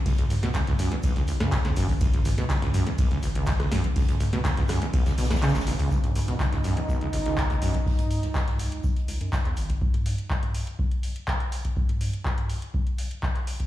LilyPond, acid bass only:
\new Staff \with { instrumentName = "Acid bass" } { \clef bass \time 4/4 \key cis \minor \tempo 4 = 123 cis,16 cis,16 cis,16 b,16 cis,16 cis,16 fis,16 e,16 b,,16 cis,16 cis,16 cis,16 cis,16 cis,16 fis,16 e,16 | cis,16 cis,16 cis,16 b,16 cis,16 cis,16 fis,16 e,16 b,,16 cis,16 cis,16 cis,16 cis,16 cis,16 fis,16 e,16 | cis,16 cis,16 cis,16 b,16 cis,16 cis,16 fis,16 e,16 b,,16 cis,16 b,16 e,16 cis16 cis,16 b,,16 cis,16 | cis,16 cis,16 cis,16 b,16 cis,16 cis,16 fis,16 e,16 b,,16 cis,16 cis,16 cis,16 cis,16 cis,16 fis,16 e,16 |
r1 | r1 | r1 | }